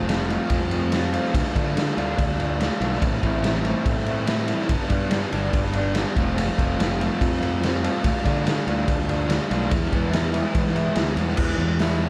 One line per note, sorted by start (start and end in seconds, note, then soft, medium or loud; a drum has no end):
0.00 0.37 F1 medium
0.00 0.15 F3 medium
0.00 0.14 A3 medium
0.00 0.14 C4 medium
0.00 0.14 F4 medium
0.07 0.91 F3 medium
0.07 0.31 A3 medium
0.07 0.29 C4 medium
0.07 0.28 F4 medium
0.07 snare loud
0.07 ride loud
0.29 0.57 F3 medium
0.29 0.57 A3 medium
0.29 0.92 A3 medium
0.29 0.57 C4 medium
0.29 0.93 C4 medium
0.29 0.93 F4 medium
0.29 0.56 F4 medium
0.29 ride medium
0.50 1.17 F2 medium
0.50 kick loud
0.50 ride medium
0.71 1.00 F3 medium
0.71 0.99 A3 medium
0.71 0.99 C4 medium
0.71 0.99 F4 medium
0.71 ride medium
0.91 1.33 F3 medium
0.91 1.15 A3 medium
0.91 1.13 C4 medium
0.91 1.12 F4 medium
0.91 snare medium
0.91 ride loud
1.13 1.35 F3 medium
1.13 1.35 A3 medium
1.13 1.34 A3 medium
1.13 1.35 C4 medium
1.13 1.33 C4 medium
1.13 1.33 F4 medium
1.13 1.34 F4 medium
1.13 ride medium
1.26 snare soft
1.33 1.43 D2 medium
1.33 1.74 D3 medium
1.33 1.76 A3 medium
1.33 1.76 D4 medium
1.33 1.77 F4 medium
1.33 kick loud
1.33 ride loud
1.56 1.89 D3 loud
1.56 1.84 D3 medium
1.56 1.83 A3 medium
1.56 1.83 D4 medium
1.56 1.83 F4 medium
1.56 kick medium
1.56 ride medium
1.75 2.18 D3 medium
1.75 1.99 A3 medium
1.75 1.97 D4 medium
1.75 1.95 F4 medium
1.75 snare loud
1.75 ride loud
1.97 2.14 D2 medium
1.97 2.25 D3 medium
1.97 2.25 A3 medium
1.97 2.59 A3 medium
1.97 2.25 D4 medium
1.97 2.59 D4 medium
1.97 2.60 F4 medium
1.97 2.25 F4 medium
1.97 ride medium
2.18 2.68 D2 medium
2.18 kick loud
2.18 ride medium
2.31 snare soft
2.40 2.67 D3 medium
2.40 2.68 A3 medium
2.40 2.67 D4 medium
2.40 2.67 F4 medium
2.40 ride medium
2.59 3.00 D3 medium
2.59 2.82 A3 medium
2.59 2.81 D4 medium
2.59 2.79 F4 medium
2.59 snare loud
2.59 ride medium
2.80 2.97 B1 medium
2.80 3.03 D3 medium
2.80 3.03 A3 medium
2.80 2.99 A3 medium
2.80 3.03 D4 medium
2.80 3.01 D4 medium
2.80 3.00 F4 medium
2.80 3.02 F4 medium
2.80 ride medium
2.94 snare soft
2.99 3.19 A1 loud
2.99 3.41 A2 medium
2.99 3.41 E3 medium
2.99 3.42 A3 medium
2.99 3.43 C4 medium
2.99 3.44 E4 loud
2.99 kick loud
2.99 ride medium
3.23 3.73 A1 medium
3.23 3.52 E3 medium
3.23 3.51 A3 medium
3.23 3.51 C4 medium
3.23 3.51 E4 medium
3.23 kick medium
3.23 ride medium
3.42 3.85 A2 medium
3.42 3.85 E3 medium
3.42 3.64 A3 medium
3.42 3.63 C4 medium
3.42 3.61 E4 medium
3.42 snare loud
3.42 ride medium
3.62 4.26 A3 medium
3.62 4.27 C4 medium
3.62 4.27 E4 medium
3.62 3.93 E4 medium
3.62 ride medium
3.67 3.94 E3 medium
3.67 3.94 A3 medium
3.67 3.93 C4 medium
3.86 4.52 A2 loud
3.86 kick loud
3.86 ride medium
3.98 snare soft
4.06 4.35 E3 medium
4.06 4.35 A3 medium
4.06 4.35 C4 medium
4.06 4.35 E4 medium
4.06 ride medium
4.26 4.68 E3 medium
4.26 4.48 A3 medium
4.26 4.48 C4 medium
4.26 4.46 E4 medium
4.26 snare loud
4.26 ride loud
4.47 4.71 E3 medium
4.47 4.69 A3 soft
4.47 4.71 A3 medium
4.47 4.69 C4 medium
4.47 4.70 C4 medium
4.47 4.68 E4 medium
4.47 4.70 E4 medium
4.47 ride medium
4.60 snare soft
4.68 4.78 G1 medium
4.68 5.08 G2 medium
4.68 5.10 D3 medium
4.68 5.11 G3 medium
4.68 5.11 B3 medium
4.68 5.12 D4 medium
4.68 kick loud
4.68 ride loud
4.90 5.24 G2 medium
4.90 5.19 D3 medium
4.90 5.18 G3 medium
4.90 5.18 B3 medium
4.90 5.18 D4 medium
4.90 kick medium
4.90 ride medium
5.10 5.53 G2 medium
5.10 5.53 D3 medium
5.10 5.33 G3 medium
5.10 5.32 B3 medium
5.10 5.31 D4 loud
5.10 snare loud
5.10 ride loud
5.32 5.49 G1 medium
5.32 5.61 D3 medium
5.32 5.61 G3 medium
5.32 5.95 G3 medium
5.32 5.60 B3 medium
5.32 5.96 B3 medium
5.32 5.96 D4 medium
5.32 5.60 D4 medium
5.32 ride medium
5.53 6.03 G1 medium
5.53 kick loud
5.53 ride medium
5.65 snare soft
5.73 6.02 D3 medium
5.73 6.02 G3 medium
5.73 6.02 B3 medium
5.73 6.02 D4 medium
5.73 ride medium
5.94 6.15 D3 medium
5.94 6.16 G3 medium
5.94 6.16 B3 medium
5.94 6.15 D4 medium
5.94 snare loud
5.94 ride medium
6.16 6.50 F1 medium
6.16 6.45 F3 medium
6.16 6.36 F3 medium
6.16 6.44 A3 medium
6.16 6.37 A3 medium
6.16 6.44 C4 medium
6.16 6.37 C4 medium
6.16 6.39 F4 medium
6.16 6.44 F4 medium
6.16 kick loud
6.16 ride medium
6.36 6.78 F3 medium
6.36 6.79 A3 loud
6.36 6.80 C4 medium
6.36 6.81 F4 medium
6.36 ride medium
6.58 7.08 F1 medium
6.58 6.86 F3 medium
6.58 6.86 A3 medium
6.58 6.86 C4 medium
6.58 6.86 F4 loud
6.58 kick medium
6.58 ride medium
6.78 7.61 F3 medium
6.78 7.02 A3 loud
6.78 7.00 C4 loud
6.78 6.99 F4 loud
6.78 snare loud
6.78 ride medium
7.00 7.28 F3 medium
7.00 7.28 A3 medium
7.00 7.62 A3 medium
7.00 7.28 C4 medium
7.00 7.63 C4 medium
7.00 7.27 F4 medium
7.00 7.64 F4 medium
7.00 ride medium
7.21 7.87 F2 loud
7.21 kick loud
7.21 ride medium
7.33 snare soft
7.41 7.69 F3 medium
7.41 7.69 A3 medium
7.41 7.69 C4 medium
7.41 7.69 F4 medium
7.41 ride medium
7.61 8.02 F3 medium
7.61 7.84 A3 medium
7.61 7.82 C4 medium
7.61 7.81 F4 medium
7.61 snare loud
7.61 ride medium
7.82 8.05 F3 medium
7.82 8.05 A3 medium
7.82 8.03 A3 medium
7.82 8.05 C4 medium
7.82 8.04 C4 medium
7.82 8.03 F4 medium
7.82 8.04 F4 medium
7.82 ride medium
8.03 8.13 D2 loud
8.03 8.45 D3 medium
8.03 8.46 A3 medium
8.03 8.47 D4 medium
8.03 8.48 F4 loud
8.03 kick loud
8.03 ride loud
8.25 8.59 D3 loud
8.25 8.53 D3 medium
8.25 8.53 A3 medium
8.25 8.53 D4 medium
8.25 8.53 F4 loud
8.25 kick medium
8.25 ride medium
8.47 8.89 D3 medium
8.47 8.68 A3 loud
8.47 8.66 D4 medium
8.47 8.65 F4 loud
8.47 snare loud
8.47 ride loud
8.66 8.84 D2 medium
8.66 8.95 D3 medium
8.66 8.95 A3 medium
8.66 9.28 A3 medium
8.66 8.95 D4 medium
8.66 9.29 D4 medium
8.66 9.29 F4 medium
8.66 8.95 F4 medium
8.66 ride medium
8.88 9.38 D2 medium
8.88 kick loud
8.88 ride medium
9.09 9.37 D3 medium
9.09 9.37 A3 medium
9.09 9.37 D4 medium
9.09 9.37 F4 medium
9.09 ride medium
9.28 9.69 D3 medium
9.28 9.51 A3 medium
9.28 9.50 D4 medium
9.28 9.48 F4 medium
9.28 snare loud
9.28 ride medium
9.50 9.68 B1 medium
9.50 9.72 D3 medium
9.50 9.72 A3 medium
9.50 9.70 A3 medium
9.50 9.72 D4 medium
9.50 9.71 D4 medium
9.50 9.70 F4 medium
9.50 9.72 F4 medium
9.50 ride medium
9.69 9.89 E2 loud
9.69 10.10 E3 medium
9.69 10.11 G#3 medium
9.69 10.12 B3 loud
9.69 10.13 E4 loud
9.69 kick loud
9.69 ride loud
9.92 10.42 E2 loud
9.92 10.21 E3 medium
9.92 10.21 G#3 medium
9.92 10.20 B3 loud
9.92 10.20 E4 medium
9.92 kick medium
9.92 ride medium
10.11 10.54 E3 loud
10.11 10.33 G#3 medium
10.11 10.32 B3 medium
10.11 10.31 E4 loud
10.11 snare loud
10.11 ride loud
10.32 10.62 E3 medium
10.32 10.62 G#3 medium
10.32 10.96 G#3 medium
10.32 10.97 B3 medium
10.32 10.62 B3 medium
10.32 10.97 E4 medium
10.32 10.61 E4 medium
10.32 ride medium
10.55 10.88 E3 loud
10.55 kick loud
10.55 ride medium
10.67 snare soft
10.76 11.04 E3 medium
10.76 11.04 G#3 medium
10.76 11.03 B3 medium
10.76 11.03 E4 medium
10.76 ride medium
10.95 11.16 D2 medium
10.95 11.37 E3 medium
10.95 11.18 G#3 medium
10.95 11.17 B3 medium
10.95 11.15 E4 medium
10.95 snare loud
10.95 ride medium
11.16 11.36 E2 medium
11.16 11.38 E3 medium
11.16 11.39 G#3 medium
11.16 11.38 B3 medium
11.16 11.39 B3 medium
11.16 11.37 E4 medium
11.16 11.39 E4 medium
11.16 ride medium
11.29 snare soft
11.37 11.55 E2 medium
11.37 11.59 E3 medium
11.37 12.09 E3 medium
11.37 11.59 G#3 medium
11.37 11.59 B3 loud
11.37 kick loud
11.37 crash loud
11.58 12.08 E2 medium
11.58 11.79 E3 medium
11.58 12.00 G#3 medium
11.58 11.79 G#3 medium
11.79 12.01 E3 medium
11.79 12.01 G#3 medium
11.79 12.01 B3 loud
11.79 12.09 E4 medium
11.79 snare loud
11.79 open hi-hat medium
12.01 12.09 E3 medium
12.01 12.09 G#3 medium